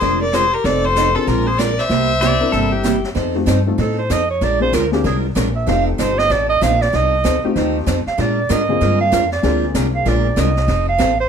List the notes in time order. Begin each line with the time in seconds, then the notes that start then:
Already playing: C4 D4 G#4 A#4 C5
0.01 F1 F3 G#3 D4 F4 A#4, brush sweep, snare
0.21 A#4 D5
0.33 F3 G#3 D4 F4 G#4 A#4 C5, snare, hi-hat pedal
0.52 G4 A#4
0.64 F1 F3 C4 D#4 A4 D5, brush sweep, snare
0.84 A4 C5
0.96 F3 C4 D#4 A4, snare, hi-hat pedal
1.15 C4 D4 F4 G#4 A4 A#4
1.27 A#1 F3 G#3 D4 F4 A#4, brush sweep, snare
1.47 G#4 C5
1.58 F3 G#3 D4 F4 A#4 D5, snare, hi-hat pedal
1.79 C5 E5, snare
1.90 C2 C3 G3 A#3 E4 G4, brush sweep, snare
2.21 C3 G3 A#3 E4 G4 D5, snare, hi-hat pedal
2.40 C4 D4 E4 A#4
2.52 G1 C3 G3 A#3 E4 G4 A4, brush sweep, snare
2.72 G4
2.83 C3 G3 A#3 E4 G4, snare, hi-hat pedal
3.04 snare
3.15 F2 F3 C4 D#4 A4, brush sweep, snare
3.35 A3 C4 D#4 F4 G4
3.46 G2 F3 C4 D#4 A4, snare, hi-hat pedal
3.66 A3 C4 D#4 F4 A4
3.78 A2 F3 C4 D#4 A4, brush sweep, snare
3.98 C5
4.10 F2 F3 C4 D#4 A4 D#5, snare, hi-hat pedal
4.30 C#5
4.41 A#1 F3 G#3 D4 F4 A#4 D5, brush sweep, snare
4.60 A#3 C4 D4 F4 G#4 C5
4.73 D2 F3 G#3 D4 F4 A#4, snare, hi-hat pedal
4.92 A#3 C4 D4 F4 G4 G#4, snare
5.04 C2 F3 G#3 D4 F4 G#4 A#4, brush sweep, snare
5.35 A#1 F3 G#3 D4 F4 A#4, snare, hi-hat pedal
5.56 E5
5.66 F1 F3 A3 C4 D#4 F4 G4 A4 F5, brush sweep, snare
5.87 A4
5.98 G1 F3 C4 D#4 A4 C5, snare, hi-hat pedal
6.18 D#5, snare
6.30 A1 F3 C4 D#4 A4 D5, brush sweep, snare
6.49 D#5
6.61 A#1 F3 C4 D#4 A4 F5, snare, hi-hat pedal
6.82 D5, snare
6.93 C2 F3 C4 D#4 A4 D#5, brush sweep, snare
7.24 D2 F3 C4 D#4 A4, snare, hi-hat pedal
7.44 A3 C4 D#4 F4 G4, muted upright bass stroke
7.56 D#2 F3 C4 D#4 A4, brush sweep, snare
7.87 F2 F3 C4 D#4 A4, snare, hi-hat pedal
8.06 F5, muted upright bass stroke, snare
8.18 A#2 F3 G#3 D4 F4 A#4 D5, brush sweep, snare
8.49 G#2 F3 G#3 D4 F4 A#4 D#5, snare, hi-hat pedal
8.69 D3 A#3 C4 F4 G#4
8.81 G2 F3 G#3 D4 F4 A#4, brush sweep, snare
9.01 F5
9.12 F2 F3 G#3 D4 F4 A#4, snare, hi-hat pedal
9.32 D5, snare
9.43 D2 F3 G#3 A#3 C4 D4 F4 G#4 A#4, brush sweep, snare
9.74 C2 F3 G#3 D4 F4 A#4, snare, hi-hat pedal
9.95 F5
10.05 A#1 F3 G#3 D4 F4 A#4 D5, brush sweep, snare
10.36 C2 F3 G#3 D4 F4 A#4 D#5, snare, hi-hat pedal
10.57 snare
10.68 F1 F3 C4 D#4 A4, brush sweep, snare
10.89 F5
10.98 A1 F3 C4 D#4 A4, snare, hi-hat pedal
11.21 C5